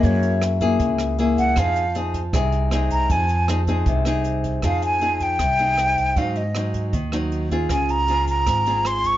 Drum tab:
HH |xxxxxxxx|xxxxxxxx|xxxxxxxx|xxxxxxxx|
SD |--r--r--|r---r-r-|--r--r--|r---r-r-|
BD |o--oo--o|o--oo--o|o--oo--o|o--oo--o|

HH |xxxxxxxx|xxxxxxxx|
SD |--r--r--|r---r-r-|
BD |o--oo--o|o--oo--o|